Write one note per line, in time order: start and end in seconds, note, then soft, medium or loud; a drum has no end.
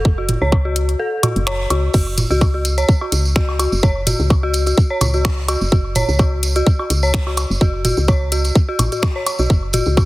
0.05 0.37 F#1 loud
0.05 kick loud
0.18 0.21 F#4 medium
0.29 closed hi-hat medium
0.29 mid tom medium
0.42 0.96 C#2 loud
0.42 0.47 C#5 medium
0.52 kick loud
0.52 low woodblock soft
0.65 0.69 F#4 medium
0.76 closed hi-hat medium
0.89 closed hi-hat soft
0.99 1.04 A4 medium
1.23 1.27 F#4 medium
1.23 closed hi-hat medium
1.23 mid tom medium
1.23 low woodblock medium
1.36 1.66 F#1 loud
1.36 closed hi-hat soft
1.47 1.53 C#5 loud
1.47 finger snap loud
1.47 low woodblock medium
1.70 1.89 C#2 medium
1.70 1.75 F#4 medium
1.70 closed hi-hat medium
1.70 low woodblock medium
1.93 2.26 F#1 loud
1.93 1.98 F#4 medium
1.93 kick loud
1.93 tambourine soft
1.93 crash medium
2.18 closed hi-hat medium
2.18 mid tom medium
2.18 tambourine medium
2.30 2.84 C#2 medium
2.30 2.34 F#4 loud
2.30 tambourine soft
2.41 kick loud
2.41 tambourine soft
2.41 low woodblock soft
2.54 2.58 F#4 medium
2.65 closed hi-hat medium
2.65 tambourine medium
2.78 2.83 C#5 medium
2.78 closed hi-hat soft
2.78 tambourine soft
2.89 kick loud
2.89 tambourine soft
3.01 3.05 F#4 medium
3.01 low woodblock soft
3.12 3.67 C#2 medium
3.12 closed hi-hat medium
3.12 tambourine medium
3.25 tambourine medium
3.36 3.40 F#4 loud
3.36 finger snap loud
3.36 kick loud
3.49 low woodblock medium
3.59 3.64 F#4 medium
3.59 closed hi-hat medium
3.59 tambourine medium
3.59 low woodblock medium
3.72 3.81 F#1 medium
3.72 tambourine medium
3.83 4.15 F#1 loud
3.83 3.89 C#5 loud
3.83 kick loud
3.83 tambourine soft
4.07 4.11 F#4 medium
4.07 closed hi-hat medium
4.07 mid tom medium
4.07 tambourine loud
4.19 4.73 C#2 loud
4.19 tambourine medium
4.30 kick loud
4.30 tambourine soft
4.30 low woodblock medium
4.43 4.47 F#4 loud
4.54 closed hi-hat medium
4.54 tambourine medium
4.66 4.70 F#4 medium
4.66 closed hi-hat soft
4.66 tambourine medium
4.78 kick loud
4.78 tambourine soft
4.90 4.96 C#5 loud
5.01 5.56 C#2 medium
5.01 closed hi-hat medium
5.01 mid tom medium
5.01 tambourine medium
5.01 low woodblock medium
5.14 5.17 F#4 medium
5.14 tambourine medium
5.25 finger snap loud
5.25 kick loud
5.25 low woodblock medium
5.48 5.53 F#4 loud
5.48 closed hi-hat medium
5.48 tambourine medium
5.48 low woodblock medium
5.61 5.70 F#1 medium
5.61 tambourine soft
5.72 6.04 F#1 medium
5.72 5.76 F#4 medium
5.72 kick loud
5.72 tambourine soft
5.95 6.02 C#5 loud
5.95 closed hi-hat medium
5.95 mid tom medium
5.95 tambourine medium
6.08 6.62 C#2 loud
6.08 tambourine medium
6.19 6.23 F#4 medium
6.19 kick loud
6.19 tambourine soft
6.19 low woodblock medium
6.43 closed hi-hat loud
6.43 tambourine loud
6.56 6.59 F#4 medium
6.56 closed hi-hat soft
6.56 tambourine medium
6.67 kick loud
6.67 tambourine soft
6.79 6.83 F#4 medium
6.79 low woodblock medium
6.90 7.45 C#2 medium
6.90 closed hi-hat loud
6.90 tambourine medium
7.03 7.08 C#5 loud
7.03 tambourine medium
7.14 finger snap loud
7.14 kick loud
7.27 7.30 F#4 medium
7.27 low woodblock medium
7.37 closed hi-hat loud
7.37 tambourine medium
7.37 low woodblock medium
7.50 7.58 F#1 medium
7.50 tambourine medium
7.61 7.93 F#1 loud
7.61 7.65 F#4 loud
7.61 kick loud
7.61 tambourine soft
7.85 7.89 F#4 medium
7.85 closed hi-hat medium
7.85 mid tom medium
7.85 tambourine medium
7.97 8.51 C#2 loud
7.97 tambourine soft
8.08 8.14 C#5 loud
8.08 kick loud
8.08 tambourine soft
8.08 low woodblock medium
8.32 8.36 F#4 medium
8.32 closed hi-hat loud
8.32 tambourine medium
8.44 closed hi-hat soft
8.44 tambourine medium
8.55 kick loud
8.55 tambourine soft
8.69 8.72 F#4 loud
8.79 8.89 A1 medium
8.79 closed hi-hat medium
8.79 mid tom medium
8.79 tambourine loud
8.79 low woodblock medium
8.92 8.96 F#4 medium
8.92 closed hi-hat soft
8.92 tambourine soft
9.02 finger snap loud
9.02 kick loud
9.02 tambourine soft
9.02 low woodblock medium
9.16 9.21 C#5 medium
9.26 closed hi-hat medium
9.26 tambourine medium
9.26 low woodblock medium
9.39 9.47 B1 medium
9.39 9.43 F#4 medium
9.39 tambourine soft
9.50 9.82 F#1 loud
9.50 kick loud
9.50 tambourine soft
9.73 9.78 F#4 loud
9.73 closed hi-hat medium
9.73 mid tom medium
9.73 tambourine medium
9.86 10.05 C#2 medium
9.86 tambourine soft
9.97 10.01 F#4 medium
9.97 kick loud
9.97 tambourine soft
9.97 low woodblock medium